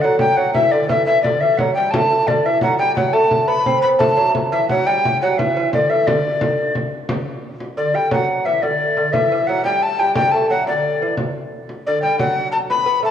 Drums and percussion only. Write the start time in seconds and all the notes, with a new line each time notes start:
0.03 frame drum
0.19 frame drum
0.55 frame drum
0.73 frame drum
0.89 frame drum
1.07 frame drum
1.24 frame drum
1.59 frame drum
1.76 frame drum
1.94 frame drum
2.28 frame drum
2.61 frame drum
2.97 frame drum
3.14 frame drum
3.31 frame drum
3.66 frame drum
3.84 frame drum
4.00 frame drum
4.18 frame drum
4.35 frame drum
4.69 frame drum
5.05 frame drum
5.23 frame drum
5.39 frame drum
5.73 frame drum
5.90 frame drum
6.07 frame drum
6.25 frame drum
6.41 frame drum
6.58 frame drum
6.75 frame drum
6.92 frame drum
7.09 frame drum
7.60 frame drum
7.95 frame drum
8.11 frame drum
8.63 frame drum
8.97 frame drum
9.14 frame drum
9.64 frame drum
9.99 frame drum
10.15 frame drum
10.33 frame drum
10.67 frame drum
10.84 frame drum
11.01 frame drum
11.17 frame drum
11.69 frame drum
12.03 frame drum
12.19 frame drum
12.70 frame drum
13.04 frame drum